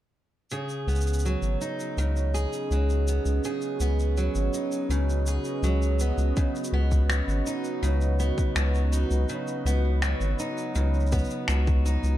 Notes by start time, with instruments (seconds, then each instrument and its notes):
0.51 steel-string acoustic guitar C#3 G#4, analog synth pad C#4, shaker
0.69 shaker
0.87 analog synth bass C#2, steel-string acoustic guitar B3, shaker
0.95 shaker
1.01 shaker
1.07 shaker
1.13 shaker
1.19 shaker
1.25 steel-string acoustic guitar F#3, shaker
1.35 analog synth pad B4
1.40 analog synth bass G#1, analog synth pad F#4, shaker
1.61 steel-string acoustic guitar D#4, shaker
1.80 analog synth pad D#5, shaker
1.97 analog synth bass C#2, steel-string acoustic guitar C#3, shaker
2.16 shaker
2.34 steel-string acoustic guitar G#4, shaker
2.53 shaker
2.71 analog synth bass C#2, steel-string acoustic guitar F#3, shaker
2.90 shaker
3.08 steel-string acoustic guitar B3, shaker
3.25 analog synth bass C#2, shaker
3.44 steel-string acoustic guitar C#3 G#4, shaker
3.61 shaker
3.80 analog synth bass C#2, steel-string acoustic guitar B3, shaker
3.99 shaker
4.17 steel-string acoustic guitar F#3, shaker
4.35 analog synth bass G#1, shaker
4.54 steel-string acoustic guitar D#4, shaker
4.72 shaker
4.89 analog synth bass C#2, steel-string acoustic guitar C#3, shaker
5.10 shaker
5.26 steel-string acoustic guitar G#4, shaker
5.45 shaker
5.62 analog synth bass C#2, steel-string acoustic guitar F#3, shaker
5.82 shaker
5.99 steel-string acoustic guitar B3, shaker
6.17 analog synth bass C#2, shaker
6.37 steel-string acoustic guitar C#3, kick, shaker
6.56 shaker
6.64 shaker
6.72 analog synth bass C#2, steel-string acoustic guitar B3
6.91 kick, shaker
7.10 steel-string acoustic guitar F#3, finger snap, shaker
7.27 analog synth bass G#1, shaker
7.46 steel-string acoustic guitar D#4, shaker
7.64 shaker
7.82 analog synth bass C#2, steel-string acoustic guitar C#3, shaker
8.01 shaker
8.20 steel-string acoustic guitar B3, shaker
8.38 kick, shaker
8.56 analog synth bass C#2, steel-string acoustic guitar F#3, finger snap, shaker
8.75 shaker
8.92 steel-string acoustic guitar D#4, shaker
9.11 analog synth bass C#2, shaker
9.29 steel-string acoustic guitar C#3, shaker
9.47 shaker
9.65 analog synth bass C#2, steel-string acoustic guitar B3, shaker
10.02 steel-string acoustic guitar F#3, finger snap, shaker
10.20 analog synth bass G#1, shaker
10.39 steel-string acoustic guitar D#4, shaker
10.58 shaker
10.75 analog synth bass C#2, steel-string acoustic guitar C#3, shaker
10.94 shaker
11.00 shaker
11.06 shaker
11.12 steel-string acoustic guitar B3, kick, shaker
11.18 shaker
11.24 shaker
11.30 shaker
11.48 analog synth bass C#2, steel-string acoustic guitar F#3, finger snap, shaker
11.67 kick, shaker
11.86 steel-string acoustic guitar D#4, shaker
12.03 analog synth bass C#2, shaker